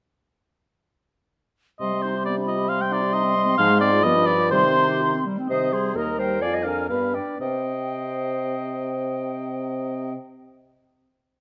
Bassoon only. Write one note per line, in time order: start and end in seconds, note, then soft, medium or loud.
1.81 3.55 C3 soft
3.59 4.06 G#2 medium
4.04 4.54 G2 medium
4.53 5.26 C3 medium
5.50 5.98 C3 soft
5.97 6.44 D#2 soft
6.42 6.89 F2 soft
6.90 7.15 G2 soft
7.41 10.15 C3 soft